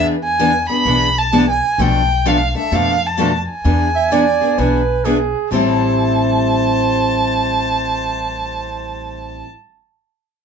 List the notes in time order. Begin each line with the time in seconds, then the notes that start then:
Already playing: E2 E3 B3 D4 G#4 B4
0.24 G#5
0.39 E3 B3 D4 G#4 B4
0.69 B3 D4 G#4 B5
0.85 B1 E3 B3 D4 G#4 B4
1.18 A5
1.32 E3 B3 D4 G#4 B4
1.50 G#5
1.78 B1 B2 F3 A3 D4 A4 B4 G5
2.25 B2 F3 A3 D4 A4 B4 F5
2.55 A3 D4 A4 E5
2.71 F2 B2 F3 A3 D4 A4 B4 F5
3.07 A5
3.19 B2 F3 A3 D4 A4 B4
3.51 G#5
3.64 E2 E3 B3 D4 G#4 B4
3.96 E5
4.11 E3 B3 D4 G#4 B4 D5
4.41 B3 D4 G#4
4.58 B1 E3 B3 D4 G#4 B4
5.05 E3 B3 D4 G#4 B4
5.51 A1 A2 E3 G3 C4 E4 A4 C5 A5